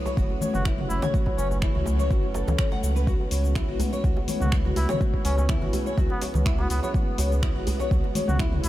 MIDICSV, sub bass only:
0, 0, Header, 1, 2, 480
1, 0, Start_track
1, 0, Tempo, 483871
1, 1130, Time_signature, 4, 2, 24, 8
1, 8618, End_track
2, 0, Start_track
2, 0, Title_t, "Sub bass"
2, 0, Program_c, 0, 38
2, 171, Note_on_c, 0, 30, 100
2, 270, Note_off_c, 0, 30, 0
2, 539, Note_on_c, 0, 30, 84
2, 852, Note_off_c, 0, 30, 0
2, 889, Note_on_c, 0, 30, 84
2, 989, Note_off_c, 0, 30, 0
2, 1368, Note_on_c, 0, 30, 97
2, 1692, Note_off_c, 0, 30, 0
2, 1736, Note_on_c, 0, 37, 86
2, 2089, Note_on_c, 0, 30, 101
2, 2104, Note_off_c, 0, 37, 0
2, 2413, Note_off_c, 0, 30, 0
2, 2456, Note_on_c, 0, 37, 77
2, 2545, Note_off_c, 0, 37, 0
2, 2809, Note_on_c, 0, 37, 101
2, 3132, Note_off_c, 0, 37, 0
2, 3289, Note_on_c, 0, 37, 96
2, 3612, Note_off_c, 0, 37, 0
2, 3656, Note_on_c, 0, 32, 86
2, 3745, Note_off_c, 0, 32, 0
2, 4008, Note_on_c, 0, 37, 101
2, 4109, Note_off_c, 0, 37, 0
2, 4374, Note_on_c, 0, 37, 84
2, 4689, Note_off_c, 0, 37, 0
2, 4727, Note_on_c, 0, 37, 82
2, 4828, Note_off_c, 0, 37, 0
2, 5207, Note_on_c, 0, 37, 96
2, 5531, Note_off_c, 0, 37, 0
2, 5574, Note_on_c, 0, 32, 88
2, 5664, Note_off_c, 0, 32, 0
2, 5928, Note_on_c, 0, 37, 102
2, 6028, Note_off_c, 0, 37, 0
2, 6293, Note_on_c, 0, 37, 85
2, 6609, Note_off_c, 0, 37, 0
2, 6649, Note_on_c, 0, 37, 82
2, 6749, Note_off_c, 0, 37, 0
2, 7128, Note_on_c, 0, 37, 94
2, 7452, Note_off_c, 0, 37, 0
2, 7497, Note_on_c, 0, 32, 85
2, 7585, Note_off_c, 0, 32, 0
2, 7849, Note_on_c, 0, 37, 104
2, 7949, Note_off_c, 0, 37, 0
2, 8217, Note_on_c, 0, 37, 86
2, 8531, Note_off_c, 0, 37, 0
2, 8570, Note_on_c, 0, 37, 84
2, 8618, Note_off_c, 0, 37, 0
2, 8618, End_track
0, 0, End_of_file